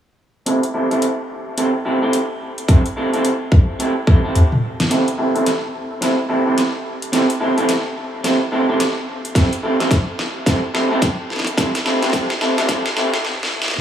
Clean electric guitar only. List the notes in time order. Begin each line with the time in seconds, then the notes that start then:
0.46 C4 E4 G4 A4
0.74 C4 E4 G4 A4
0.91 C4 E4 G4 A4
1.57 C4 E4 G4 A4
1.85 C4 E4 G4 A4
2.02 C4 E4 G4 A4
2.68 C4 E4 G4 A4
2.96 C4 E4 G4 A4
3.13 C4 E4 G4 A4
3.79 C4 E4 G4 A4
4.07 C4 E4 G4 A4
4.24 C4 E4 G4 A4
4.90 C4 E4 G4 A4
5.18 C4 E4 G4 A4
5.35 C4 E4 G4 A4
6.01 C4 E4 G4 A4
6.29 C4 E4 G4 A4
6.46 C4 E4 G4 A4
7.12 C4 E4 G4 A4
7.40 C4 E4 G4 A4
7.57 C4 E4 G4 A4
8.24 C4 E4 G4 A4
8.52 C4 E4 G4 A4
8.69 C4 E4 G4 A4
9.35 C4 E4 G4 A4
9.63 C4 E4 G4 A4
9.80 C4 E4 G4 A4
10.46 C4 E4 G4 A4
10.74 C4 E4 G4 A4
10.91 C4 E4 G4 A4
11.57 C4 E4 G4 A4
11.85 C4 E4 G4 A4
12.02 C4 E4 G4 A4
12.13 C4 E4 A4
12.41 C4 E4 G4 A4
12.58 C4 E4 G4 A4
12.68 C4 E4 G4 A4
12.96 C4 E4 G4 A4